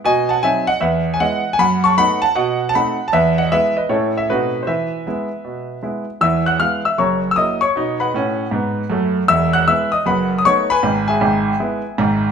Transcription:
0.04 B2 D#5 G#5
0.29 F#5 A5
0.42 F#3 C4 D#4 E5 G#5
0.67 D#5 F#5
0.81 E2 B4 E5
1.14 G#5
1.20 G#3 B3 E4 D#5 F#5
1.53 G#5
1.59 F#2 F#5 B5
1.84 A5 C#6
1.97 A3 B3 D#4 F#5 B5
2.22 F#5 A5
2.35 B2 D#5 F#5
2.69 A5
2.75 A3 C4 D#4 F#5 B5
3.08 A5
3.13 E2 B4 E5
3.38 D#5 F#5
3.51 G#3 B3 E4 B4 E5
3.77 B4 D#5
3.89 A2 A3 C#4 E4 A4 C#5
4.17 E5
4.30 B2 A3 C4 D#4 F#4 B4
4.63 C5
4.67 E3 B4 E5
5.07 G#3 B3 E4
5.45 B2
5.83 G#3 B3 E4
6.21 E2 E3 E5 E6
6.46 F#5 F#6
6.59 G#3 B3 E4 F5 F6
6.85 E5 E6
6.98 F#1 F#2 C#5 A#5 C#6
7.31 E6
7.36 F#3 A#3 E4 D#5 D#6
7.61 C#5 C#6
7.76 B2 D#4
8.00 B4 F#5 B5
8.14 A2 C#4
8.51 G#2 B3
8.90 F#2 A3
9.28 E1 E2 E5 E6
9.53 F#5 F#6
9.67 G#3 B3 E4 E5 E6
9.92 D#5 D#6
10.06 F#1 F#2 B4 F#5 B5
10.38 D#6
10.45 A3 B3 D#4 C#5 C#6
10.70 B4 G#5 B5
10.83 G#1 G#2
11.08 G#4 E5 G#5
11.21 G#1 G#2
11.60 G#3 B3 E4
11.98 G#1 G#2

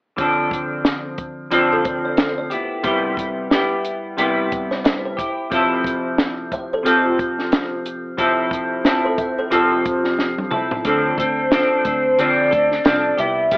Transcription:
0.17 D3 F3 C4 D4, kick, closed hi-hat
0.21 A4
0.51 kick, closed hi-hat
0.84 snare, closed hi-hat
1.18 kick, closed hi-hat
1.51 D3 F3 C4 D4 F4 A4, closed hi-hat
1.73 F4 A4
1.85 A4 C5, kick, closed hi-hat
2.05 D5
2.17 A4 C5, snare, closed hi-hat
2.38 D5
2.50 B3 E4 G4, closed hi-hat
2.83 C3 G3 B3 E4 G4, kick, closed hi-hat
3.17 kick, closed hi-hat
3.50 G3 B3 E4 G4, snare, closed hi-hat
3.84 closed hi-hat
4.17 C3 G3 B3 E4 G4, closed hi-hat
4.52 kick, closed hi-hat
4.71 C5, snare
4.84 C5 E5, snare, closed hi-hat
5.05 C5
5.17 E4 G4, kick, closed hi-hat
5.50 C3 F3 C4 E4, kick, closed hi-hat
5.54 A4
5.84 kick, closed hi-hat
6.18 snare, closed hi-hat
6.52 C5 E5, kick, closed hi-hat
6.73 A4 C5
6.83 C3 F3 C4 F4 A4, closed hi-hat
6.87 A4
7.05 F4
7.19 kick, closed hi-hat
7.39 snare
7.52 snare, closed hi-hat
7.86 closed hi-hat
8.17 C3 F3 C4 E4 A4, kick, closed hi-hat
8.51 kick, closed hi-hat
8.84 F3 C4 E4 A4 C5 E5, snare, closed hi-hat
9.04 A4 C5
9.18 C5 E5, kick, closed hi-hat
9.39 A4 C5
9.51 C3 F3 C4 F4 A4, closed hi-hat
9.72 F4
9.85 kick, closed hi-hat
10.04 snare
10.19 snare
10.38 high tom
10.51 C4 E4 A4, mid tom
10.71 floor tom
10.85 D2 D3 F3 C4 D4 A4, kick, closed hi-hat
11.17 D2 C4 D4 A4 C5, kick, closed hi-hat
11.51 F3 C4 D4 A4, snare, closed hi-hat
11.85 D2 C4 D4 A4, kick, closed hi-hat
12.18 D3 F3 C4 D4 A4 D5, closed hi-hat
12.51 D2 C4 D4 A4, kick, closed hi-hat
12.71 snare
12.84 C2 F3 C4 D4 A4, snare, closed hi-hat
13.18 C2 B3 E4 G4 E5, closed hi-hat
13.51 C3 G3 B3 E4 G4 E5, kick, closed hi-hat

